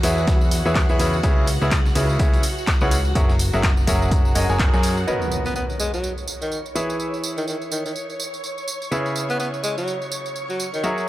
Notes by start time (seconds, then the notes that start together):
Already playing: F#4 F#5
0.03 E2 E3 E4 G#4 B4 C#5 E5, snare, closed hi-hat, open hi-hat, tambourine
0.18 tambourine
0.27 kick, snare, closed hi-hat, tambourine
0.41 tambourine
0.51 closed hi-hat, open hi-hat, tambourine
0.65 E2 E3 E4 G#4 B4 C#5 E5, tambourine
0.75 kick, snare, clap, closed hi-hat, tambourine
0.89 E2 E3 E4 G#4 B4 C#5 E5, tambourine
0.99 E2 C#3 E4 G#4 B4 C#5 E5, closed hi-hat, open hi-hat, tambourine
1.13 tambourine
1.23 C#2 C#3 E4 G#4 B4 C#5 E5, kick, closed hi-hat, tambourine
1.47 closed hi-hat, open hi-hat, tambourine
1.61 C#2 C#3 E4 G#4 B4 C#5 E5, tambourine
1.71 kick, snare, clap, closed hi-hat, tambourine
1.86 snare, tambourine
1.95 C#2 C#3 E4 G#4 B4 C#5 E5, closed hi-hat, open hi-hat, tambourine
2.09 tambourine
2.19 C#2 C#3 E4 G#4 B4 C#5 E5, kick, closed hi-hat, tambourine
2.34 closed hi-hat, tambourine
2.43 closed hi-hat, open hi-hat, tambourine
2.58 tambourine
2.67 kick, snare, clap, closed hi-hat, tambourine
2.81 C#2 C#3 E4 G#4 B4 C#5 F#5, tambourine
2.91 closed hi-hat, open hi-hat, tambourine
3.05 tambourine
3.15 F#3 F#4 G#4 A#4 C#5 E5, kick, closed hi-hat, tambourine
3.29 snare, tambourine
3.39 closed hi-hat, open hi-hat, tambourine
3.53 F#1 F#3 F#4 G#4 A#4 C#5 E5, tambourine
3.63 kick, snare, clap, closed hi-hat, tambourine
3.77 tambourine
3.87 F#1 F#3 F#4 G#4 A#4 C#5 E5, kick, closed hi-hat, open hi-hat, tambourine
4.02 tambourine
4.11 kick, closed hi-hat, tambourine
4.25 tambourine
4.35 F#1 F#3 F#4 G#4 A#4 C#5 D#5, closed hi-hat, open hi-hat, tambourine
4.49 F#1 F#3 F#4 G#4 A#4 C#5 G#5, tambourine
4.59 kick, snare, clap, closed hi-hat, tambourine
4.74 F#2 F#3 F#4 G#4 A#4 C#5 G#5, snare, tambourine
4.83 closed hi-hat, open hi-hat, tambourine
4.97 tambourine
5.07 B3 F#4 A#4 B4 C#5 D#5 C#6, tambourine, impact
5.22 tambourine
5.32 tambourine
5.46 B3, tambourine
5.55 B3, tambourine
5.70 tambourine
5.80 G#3, tambourine
5.94 F#3, tambourine
6.04 tambourine
6.18 tambourine
6.28 tambourine
6.42 D#3, tambourine
6.52 tambourine
6.66 tambourine
6.75 E3 E4 G#4 B4 C#5 E5, tambourine
6.90 tambourine
7.00 tambourine
7.14 tambourine
7.24 tambourine
7.37 D#3, tambourine
7.47 D#3, tambourine
7.62 tambourine
7.71 D#3, tambourine
7.86 D#3, tambourine
7.96 tambourine
8.10 tambourine
8.20 tambourine
8.34 tambourine
8.44 tambourine
8.58 tambourine
8.68 tambourine
8.82 tambourine
8.91 C#3 E4 G#4 B4 C#5 E5, tambourine
9.06 tambourine
9.16 tambourine
9.30 B3, tambourine
9.39 B3, tambourine
9.54 tambourine
9.63 G#3, tambourine
9.78 F#3, tambourine
9.88 tambourine
10.02 tambourine
10.12 tambourine
10.26 tambourine
10.36 tambourine
10.50 F#3, tambourine
10.60 tambourine
10.74 D#3, tambourine
10.83 F#3 F#4 G#4 A#4 C#5 E5, tambourine
10.98 tambourine